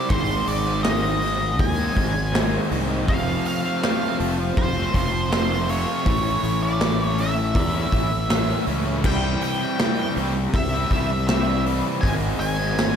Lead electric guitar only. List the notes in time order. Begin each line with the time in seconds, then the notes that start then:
Already playing: D5
0.09 C5
0.48 D5
0.83 D#5
1.60 G#5
3.09 F5
3.47 F5
4.58 C5
4.96 C5
5.33 C5
5.70 C#5
6.63 D5
7.04 C#5
7.20 E5
9.06 G5
9.43 G5
10.56 E5
10.92 E5
11.28 E5
12.01 G#5
12.40 G#5